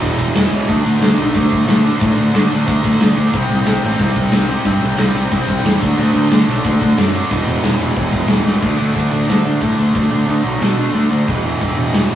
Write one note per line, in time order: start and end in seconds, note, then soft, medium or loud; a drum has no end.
0.01 0.12 E1 medium
0.01 0.34 E2 loud
0.01 0.34 B2 medium
0.01 0.35 E3 loud
0.01 kick loud
0.01 crash medium
0.19 0.29 E1 medium
0.19 kick medium
0.19 crash medium
0.35 0.45 E1 loud
0.35 0.52 E2 medium
0.35 0.52 B2 loud
0.35 0.51 E3 loud
0.35 snare loud
0.35 crash loud
0.51 0.62 C#2 medium
0.51 0.68 E2 medium
0.51 0.68 B2 loud
0.51 0.67 E3 loud
0.51 crash medium
0.68 0.79 D2 loud
0.68 1.01 D3 loud
0.68 1.01 A3 loud
0.68 1.02 D4 loud
0.68 kick loud
0.68 crash medium
0.85 0.95 D2 medium
0.85 crash medium
1.01 1.11 D2 loud
1.01 1.20 D3 medium
1.01 1.20 A3 loud
1.01 1.19 D4 loud
1.01 snare loud
1.01 crash medium
1.18 1.28 B1 medium
1.18 1.34 D3 medium
1.18 1.34 A3 loud
1.18 1.35 D4 loud
1.18 crash medium
1.34 1.45 D2 loud
1.34 1.65 D3 medium
1.34 1.66 A3 medium
1.34 1.66 D4 loud
1.34 kick loud
1.34 crash medium
1.52 1.62 D2 medium
1.52 kick medium
1.52 crash medium
1.67 1.88 D2 medium
1.67 1.84 D3 medium
1.67 1.84 A3 loud
1.67 1.83 D4 medium
1.67 snare loud
1.67 crash medium
1.84 1.98 D3 medium
1.84 1.99 A3 medium
1.84 1.99 D4 loud
1.84 crash medium
1.99 2.11 A2 loud
1.99 2.33 D3 loud
1.99 2.33 A3 loud
1.99 2.33 D4 loud
1.99 kick loud
1.99 crash medium
2.18 2.29 D2 medium
2.18 crash medium
2.34 2.45 D2 loud
2.34 2.51 D3 medium
2.34 2.50 A3 medium
2.34 2.50 D4 medium
2.34 snare loud
2.34 crash medium
2.51 2.62 D2 medium
2.51 2.66 D3 medium
2.51 2.66 A3 medium
2.51 2.66 D4 loud
2.51 crash medium
2.67 2.78 D2 loud
2.67 3.00 D3 medium
2.67 3.01 A3 loud
2.67 3.01 D4 loud
2.67 kick loud
2.67 crash medium
2.84 2.94 D2 medium
2.84 kick medium
2.84 crash medium
3.00 3.11 D2 medium
3.00 3.17 D3 medium
3.00 3.17 A3 medium
3.00 3.16 D4 loud
3.00 snare loud
3.00 crash medium
3.17 3.28 D2 medium
3.17 3.33 D3 medium
3.17 3.33 A3 medium
3.17 3.33 D4 loud
3.17 crash medium
3.33 3.44 C2 loud
3.33 3.65 C3 medium
3.33 3.66 G3 loud
3.33 3.66 C4 loud
3.33 kick loud
3.33 crash medium
3.49 3.61 C2 loud
3.49 crash medium
3.66 3.77 C2 loud
3.66 3.83 C3 medium
3.66 3.83 G3 medium
3.66 3.83 C4 medium
3.66 snare loud
3.66 crash medium
3.82 3.94 A1 medium
3.82 3.99 C3 medium
3.82 4.00 G3 medium
3.82 4.00 C4 medium
3.82 crash medium
3.99 4.10 C2 loud
3.99 4.32 C3 medium
3.99 4.33 G3 loud
3.99 4.33 C4 loud
3.99 kick loud
3.99 crash medium
4.16 4.27 C2 medium
4.16 kick medium
4.16 crash medium
4.31 4.54 C2 medium
4.31 4.47 C3 medium
4.31 4.48 G3 medium
4.31 4.47 C4 loud
4.31 snare loud
4.31 crash medium
4.48 4.64 C3 medium
4.48 4.65 G3 medium
4.48 4.65 C4 loud
4.48 crash medium
4.65 4.76 G2 loud
4.65 4.96 C3 loud
4.65 4.97 G3 loud
4.65 4.98 C4 loud
4.65 kick loud
4.65 crash medium
4.81 4.92 C2 loud
4.81 crash medium
4.98 5.09 C2 loud
4.98 5.14 C3 medium
4.98 5.14 G3 medium
4.98 5.13 C4 medium
4.98 snare loud
4.98 crash medium
5.14 5.25 C2 medium
5.14 5.30 C3 medium
5.14 5.31 G3 medium
5.14 5.32 C4 loud
5.14 crash medium
5.31 5.42 C2 loud
5.31 5.64 C3 loud
5.31 5.64 G3 loud
5.31 5.64 C4 loud
5.31 kick loud
5.31 crash medium
5.48 5.59 C2 medium
5.48 kick medium
5.48 crash medium
5.64 5.75 E2 medium
5.64 5.80 C3 medium
5.64 5.81 G3 medium
5.64 5.81 C4 medium
5.64 snare loud
5.64 crash medium
5.80 5.92 D2 medium
5.80 5.97 D3 medium
5.80 5.97 A3 medium
5.80 5.96 D4 loud
5.80 kick loud
5.80 crash loud
5.97 6.08 D2 loud
5.97 6.31 D3 loud
5.97 6.30 A3 loud
5.97 6.29 D4 loud
5.97 crash loud
6.15 6.25 D2 loud
6.15 crash medium
6.31 6.42 D2 loud
6.31 6.47 D3 medium
6.31 6.48 A3 medium
6.31 6.47 D4 medium
6.31 snare loud
6.31 crash medium
6.48 6.58 B1 medium
6.48 6.64 D3 medium
6.48 6.62 A3 loud
6.48 6.62 D4 loud
6.48 crash medium
6.63 6.75 D2 loud
6.63 6.97 D3 loud
6.63 6.97 A3 medium
6.63 6.96 D4 loud
6.63 kick loud
6.63 crash medium
6.81 6.92 D2 loud
6.81 kick medium
6.81 crash medium
6.97 7.18 F#2 medium
6.97 7.12 D3 medium
6.97 7.13 A3 medium
6.97 7.14 D4 medium
6.97 snare loud
6.97 crash medium
7.13 7.29 D3 medium
7.13 7.29 A3 medium
7.13 7.30 D4 medium
7.13 crash medium
7.30 7.41 E1 medium
7.30 7.62 E2 loud
7.30 7.63 B2 loud
7.30 7.63 E3 loud
7.30 kick loud
7.30 crash medium
7.47 7.57 E1 loud
7.47 crash medium
7.63 7.74 E1 loud
7.63 7.78 E2 medium
7.63 7.78 B2 medium
7.63 7.77 E3 medium
7.63 snare loud
7.63 crash medium
7.79 7.90 E1 medium
7.79 7.95 E2 medium
7.79 7.95 B2 loud
7.79 7.95 E3 loud
7.79 crash medium
7.96 8.07 E1 loud
7.96 8.28 E2 medium
7.96 8.28 B2 loud
7.96 8.29 E3 loud
7.96 kick loud
7.96 crash medium
8.11 8.23 E1 medium
8.11 kick loud
8.11 crash medium
8.28 8.39 E1 medium
8.28 8.45 E2 medium
8.28 8.44 B2 medium
8.28 8.44 E3 loud
8.28 snare loud
8.28 crash medium
8.45 8.57 C#2 medium
8.45 8.61 E2 medium
8.45 8.61 B2 medium
8.45 8.61 E3 loud
8.45 snare medium
8.61 8.75 D2 loud
8.61 8.78 D3 medium
8.61 8.77 A3 medium
8.61 8.77 D4 loud
8.61 kick loud
8.61 crash loud
8.61 crash medium
8.77 8.91 D2 medium
8.77 8.93 D3 medium
8.77 8.93 A3 medium
8.77 8.94 D4 loud
8.93 9.08 D2 medium
8.93 9.11 D3 medium
8.93 9.11 A3 medium
8.93 9.10 D4 medium
8.93 kick medium
8.93 crash medium
9.10 9.24 D2 medium
9.10 9.27 D3 medium
9.10 9.28 A3 medium
9.10 9.27 D4 loud
9.28 9.41 D2 medium
9.28 9.45 D3 medium
9.28 9.45 A3 medium
9.28 9.44 D4 medium
9.28 snare loud
9.28 crash medium
9.45 9.57 D2 medium
9.45 9.60 D3 medium
9.45 9.60 A3 loud
9.45 9.61 D4 loud
9.61 9.74 A2 medium
9.61 9.77 D3 medium
9.61 9.77 A3 medium
9.61 9.76 D4 medium
9.61 kick medium
9.61 crash medium
9.78 9.90 D2 medium
9.78 9.93 D3 medium
9.78 9.93 A3 medium
9.78 9.94 D4 medium
9.94 10.07 D2 loud
9.94 10.11 D3 loud
9.94 10.11 A3 loud
9.94 10.10 D4 loud
9.94 kick loud
9.94 crash medium
10.11 10.24 D2 medium
10.11 10.26 D3 medium
10.11 10.26 A3 medium
10.11 10.27 D4 medium
10.27 10.40 D2 medium
10.27 10.43 D3 medium
10.27 10.43 A3 medium
10.27 10.42 D4 medium
10.27 crash medium
10.43 10.57 B1 medium
10.43 10.58 D3 medium
10.43 10.58 A3 medium
10.43 10.59 D4 loud
10.59 10.85 B2 medium
10.59 10.77 D3 medium
10.59 10.76 A3 medium
10.59 10.76 D4 medium
10.59 snare loud
10.59 crash medium
10.77 10.92 D3 medium
10.77 10.93 A3 loud
10.77 10.93 D4 loud
10.93 11.06 D2 medium
10.93 11.10 D3 medium
10.93 11.09 A3 medium
10.93 11.09 D4 medium
10.93 crash medium
11.10 11.23 D2 medium
11.10 11.26 D3 medium
11.10 11.26 A3 medium
11.10 11.26 D4 medium
11.28 11.40 E1 loud
11.28 11.45 E2 medium
11.28 11.44 B2 medium
11.28 11.44 E3 loud
11.28 kick loud
11.28 crash medium
11.43 11.55 E1 medium
11.43 11.61 E2 medium
11.43 11.61 B2 medium
11.43 11.62 E3 medium
11.61 11.73 E1 loud
11.61 11.78 E2 medium
11.61 11.77 B2 medium
11.61 11.77 E3 medium
11.61 kick medium
11.61 crash medium
11.77 11.89 E1 medium
11.77 11.94 E2 medium
11.77 11.93 B2 loud
11.77 11.94 E3 loud
11.93 12.05 E1 medium
11.93 12.10 E2 medium
11.93 12.10 B2 medium
11.93 12.09 E3 medium
11.93 snare loud
11.93 crash medium
12.10 12.15 E1 medium
12.10 12.15 E2 medium
12.10 12.15 B2 medium
12.10 12.15 E3 loud